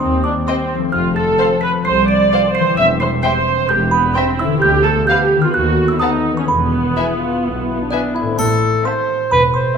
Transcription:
Already playing: D#3 G3 C4 D#4 C5
0.00 D#2 C4 C6
0.24 D4 D6
0.47 C4 C5 D#5 G5 C6
0.75 F3
0.79 A3
0.84 C4
0.89 C5 F6
0.93 F1 F2 F4
1.16 A4 A6
1.39 F3 C4 C5 F5
1.61 B4 B6
1.85 C2 C5 C7
2.08 D5 D7
2.31 F3 C4 C5 F5
2.55 C5 C7
2.60 E3
2.64 G3
2.69 C4
2.73 E2 C5
2.77 E1 E5 E7
3.00 C5 C7
3.22 G3 C4 C5 E5 G5 C7
3.69 E1 E2 G4 G6
3.91 B3 B5
4.14 G3 C4 C5 E5 G5 C6
4.39 E4 E6
4.43 D3
4.48 B3
4.53 F4
4.57 B4
4.61 D2 G4 G6
4.84 A4 A6
5.07 F3 B3 G4 B4 F5 G6
5.36 D#3
5.41 B3 F4 F6
5.45 A4
5.50 D#2 B4 F#6
5.54 D#2 F#4
5.88 E4 E6
5.99 A3 B3 D#4 B4 F#5 A5 D#6
6.32 E3
6.36 B3 C#4 C#6
6.41 G#4
6.45 E2 B4 B5
6.49 E1 B3
6.95 E4 B4 E5 G#5
7.19 F4
7.43 B1 B2 E4
7.81 D4
7.90 D4 E4 B4 D5 E5 G#5
8.15 E4 E5
8.21 A2
8.26 A3 C4
8.30 E4
8.35 A4 C5 A5, triangle
8.39 A1 A2
8.85 C4 C5 E5 A5 C6
9.31 E1 E2 B4 B5
9.54 C5 C6

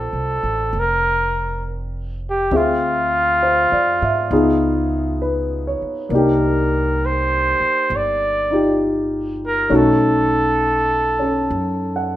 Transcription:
Already playing: C4 D4 F4 A4 C5
0.13 C2
0.43 A1
0.73 F1
0.79 A#4
2.30 G4
2.51 D2 C4 F4 G#4 E5
2.57 F4
3.42 C5
3.72 F2 D5
4.02 G#2 E5
4.31 C#2 B3 D#4 F4 G#4
5.22 B4
5.67 C#5
5.82 muted upright bass stroke
6.09 C2 A#3 D4
6.13 D#4 G4 A#4
7.05 C5
7.61 muted upright bass stroke
7.90 G1
7.96 D5
8.50 D#4 F4 G4
9.46 A#4
9.69 B1 A3 C#4 D#4 F#4
9.75 A4
11.19 C#4 A4
11.50 F#2
11.96 F#5

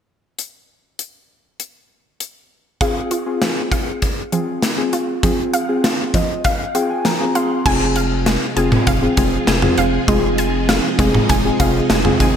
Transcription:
0.39 closed hi-hat
0.99 closed hi-hat
1.60 closed hi-hat
2.20 closed hi-hat
2.81 C4 F4 G#4 F5, kick, closed hi-hat
3.11 F4, closed hi-hat
3.26 C4 F4 G#4
3.42 F3, snare, closed hi-hat
3.72 F5, kick, closed hi-hat
4.02 kick, closed hi-hat
4.32 F3 C4 F4 G#4, closed hi-hat
4.62 snare, closed hi-hat
4.78 C4 F4 G#4
4.93 F4, closed hi-hat
5.23 F3 C4 F4 G#4, kick, closed hi-hat
5.54 F5, closed hi-hat
5.69 C4 F4 G#4
5.84 F4, snare, closed hi-hat
6.14 F3 D#5, kick, closed hi-hat
6.44 F5, kick, closed hi-hat
6.75 C4 F4 G#4 G5, closed hi-hat
6.90 G#5
7.05 F3 A#5, snare, closed hi-hat
7.20 C4 F4 G#4
7.35 C4 F4 G#4 F5 C6, closed hi-hat
7.65 F1 C3 F3 G#3 C4 F4 G#4 G#5, kick, crash
7.96 F5, closed hi-hat
8.26 G#3, snare, closed hi-hat
8.57 F1 C4 F4 G#4 G#5, closed hi-hat
8.72 mid tom
8.87 F1 F5, kick, closed hi-hat
9.02 C4 F4 G#4
9.17 F1 G#3 C4 F4 G#4, kick, closed hi-hat
9.47 F1 G#5, snare, closed hi-hat
9.62 C4 F4 G#4, mid tom
9.78 F1 F5, closed hi-hat
10.08 F1 G#3 C4 D#4 F4 G#4, kick, closed hi-hat
10.38 G#5, closed hi-hat
10.69 F5, snare, closed hi-hat
10.99 F1 G#3 C4 F4 G#4, kick, closed hi-hat
11.14 mid tom
11.29 F1 G#5, kick, closed hi-hat
11.45 C4 F4 G#4
11.60 F1 C4 F4 G#4 F5, kick, closed hi-hat
11.90 F1 G#3, snare, closed hi-hat
12.05 C4 F4 G#4, mid tom
12.20 G#1 D#3 C4 D#4 G#4 G#5, kick, closed hi-hat

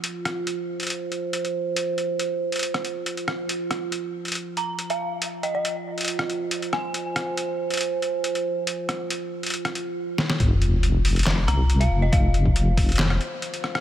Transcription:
Already playing: F3
0.04 closed hi-hat
0.25 cross-stick, closed hi-hat
0.47 closed hi-hat
0.80 closed hi-hat
0.83 closed hi-hat
0.87 closed hi-hat
0.90 closed hi-hat
1.12 closed hi-hat
1.33 closed hi-hat
1.45 closed hi-hat
1.76 closed hi-hat
1.98 closed hi-hat
2.19 closed hi-hat
2.52 closed hi-hat
2.56 closed hi-hat
2.59 closed hi-hat
2.63 closed hi-hat
2.74 cross-stick, closed hi-hat
2.85 closed hi-hat
3.06 closed hi-hat
3.17 closed hi-hat
3.28 cross-stick
3.49 closed hi-hat
3.71 cross-stick, closed hi-hat
3.92 closed hi-hat
4.25 closed hi-hat
4.28 closed hi-hat
4.32 closed hi-hat
4.35 closed hi-hat
4.57 A#5, closed hi-hat
4.79 closed hi-hat
4.90 F5, closed hi-hat
5.22 closed hi-hat
5.43 D#5, closed hi-hat
5.55 D#5
5.65 closed hi-hat
5.98 closed hi-hat
6.01 closed hi-hat
6.05 closed hi-hat
6.08 closed hi-hat
6.19 cross-stick
6.30 closed hi-hat
6.51 closed hi-hat
6.62 closed hi-hat
6.73 G#5, cross-stick
6.94 closed hi-hat
7.16 cross-stick, closed hi-hat
7.37 closed hi-hat
7.70 closed hi-hat
7.74 closed hi-hat
7.77 closed hi-hat
7.81 closed hi-hat
8.02 closed hi-hat
8.24 closed hi-hat
8.35 closed hi-hat
8.67 closed hi-hat
8.89 cross-stick, closed hi-hat
9.10 closed hi-hat
9.43 closed hi-hat
9.46 closed hi-hat
9.50 closed hi-hat
9.54 closed hi-hat
9.65 cross-stick, closed hi-hat
9.75 closed hi-hat
10.18 snare
10.30 snare
10.40 F1 F3, kick, closed hi-hat, sub drop
10.62 closed hi-hat
10.83 closed hi-hat
11.05 open hi-hat
11.16 closed hi-hat
11.19 closed hi-hat
11.23 snare, clap, closed hi-hat
11.26 closed hi-hat
11.48 C2 A#5, cross-stick, closed hi-hat
11.70 closed hi-hat
11.80 F5, closed hi-hat
11.91 F1
12.02 D#5
12.12 F1 F5, kick, closed hi-hat
12.34 closed hi-hat
12.46 kick
12.56 closed hi-hat
12.77 kick, open hi-hat
12.89 closed hi-hat
12.92 closed hi-hat
12.96 snare, clap, closed hi-hat
13.10 cross-stick
13.21 closed hi-hat
13.42 closed hi-hat
13.54 closed hi-hat
13.64 cross-stick
13.75 cross-stick

